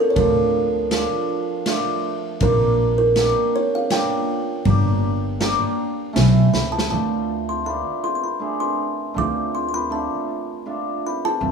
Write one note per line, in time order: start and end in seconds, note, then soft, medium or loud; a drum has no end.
0.00 0.10 A4 medium
0.10 0.17 C#5 medium
0.15 1.06 D2 medium
0.15 0.90 F3 medium
0.15 0.53 D4 medium
0.15 0.54 F4 medium
0.15 1.25 A#4 medium
0.15 kick medium
0.15 ride medium
0.91 2.46 F3 medium
0.91 1.29 D4 medium
0.91 1.29 F4 medium
0.91 snare medium
0.91 ride soft
1.66 2.04 A3 medium
1.66 2.04 D4 medium
1.66 2.04 F4 medium
1.66 snare medium
1.66 ride medium
2.40 3.31 A#1 medium
2.40 2.78 A#3 medium
2.40 2.79 D4 medium
2.40 2.79 F4 medium
2.40 2.97 A#4 medium
2.40 kick medium
2.40 ride medium
2.98 3.55 A#4 medium
3.16 3.53 A#3 medium
3.16 3.54 D4 medium
3.16 3.54 G4 medium
3.16 snare medium
3.16 ride soft
3.56 3.74 C#5 medium
3.75 3.91 F5 medium
3.90 4.28 A#3 medium
3.90 4.29 D4 medium
3.90 4.29 F4 medium
3.90 6.12 G5 medium
3.90 snare medium
3.90 ride soft
4.65 5.55 G1 medium
4.65 5.03 A#3 medium
4.65 5.03 D4 medium
4.65 5.03 G4 medium
4.65 kick medium
4.65 ride soft
5.40 5.78 A#3 medium
5.40 5.78 D4 medium
5.40 5.78 G4 medium
5.40 snare medium
5.40 ride soft
6.13 6.49 B1 medium
6.13 6.52 A3 medium
6.13 6.52 C#4 medium
6.13 6.53 E4 medium
6.13 snare medium
6.13 ride soft
6.54 6.87 C#2 medium
6.54 6.73 B5 medium
6.54 snare medium
6.72 6.89 A5 medium
6.79 snare medium
6.89 7.82 D2 medium
6.89 7.27 A3 medium
6.89 7.27 D4 soft
6.89 7.28 F4 medium
6.89 7.48 A5 medium
7.49 7.67 C6 medium
7.64 8.03 A3 soft
7.64 8.03 D4 soft
7.64 8.03 F4 medium
7.64 8.05 B5 medium
8.04 8.14 C6 medium
8.15 8.22 C6 soft
8.23 8.61 B5 medium
8.40 8.78 A3 medium
8.40 8.78 D4 soft
8.40 8.78 G#4 medium
8.60 9.18 C6 medium
9.14 10.07 D2 medium
9.14 9.53 A3 medium
9.14 9.53 D4 soft
9.14 9.53 F4 medium
9.14 9.52 D6 medium
9.55 9.67 C6 medium
9.69 9.73 C6 medium
9.74 9.92 B5 medium
9.90 10.28 A3 medium
9.90 10.28 D4 soft
9.90 10.29 F4 medium
9.90 11.00 A5 medium
10.66 11.04 A3 soft
10.66 11.04 D4 medium
10.66 11.04 F4 medium
11.07 11.23 B5 medium
11.25 11.52 A5 medium
11.40 11.52 F2 medium
11.40 11.52 A3 medium
11.40 11.52 C4 medium
11.40 11.52 F4 medium